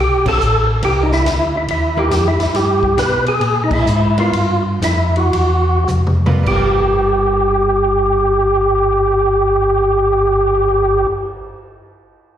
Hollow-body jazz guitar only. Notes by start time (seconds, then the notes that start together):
0.26 D3 F#3 C4 F4
0.83 E3 A#3 D#4
1.97 E3 A#3 D#4
4.18 G3 B3 F4 A#4
6.26 G3 B3 F4 A#4
6.43 G3
6.48 B3
6.52 F4 A#4